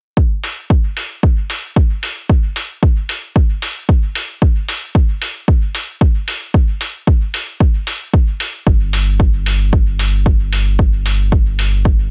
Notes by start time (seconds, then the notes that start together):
0.17 kick
0.44 open hi-hat
0.70 kick
0.97 open hi-hat
1.23 kick
1.50 open hi-hat
1.76 kick
2.03 open hi-hat
2.29 kick
2.56 open hi-hat
2.83 kick
3.09 open hi-hat
3.36 kick
3.62 open hi-hat
3.89 kick
4.15 open hi-hat
4.42 kick
4.69 open hi-hat
4.95 kick
5.22 open hi-hat
5.48 kick
5.75 open hi-hat
6.01 kick
6.28 open hi-hat
6.54 kick
6.81 open hi-hat
7.07 kick
7.34 open hi-hat
7.60 kick
7.87 open hi-hat
8.13 kick
8.40 open hi-hat
8.67 G1, kick
8.93 open hi-hat
9.20 kick
9.46 open hi-hat
9.73 kick
9.99 open hi-hat
10.26 kick
10.53 open hi-hat
10.79 kick
11.06 open hi-hat
11.32 kick
11.59 open hi-hat
11.85 kick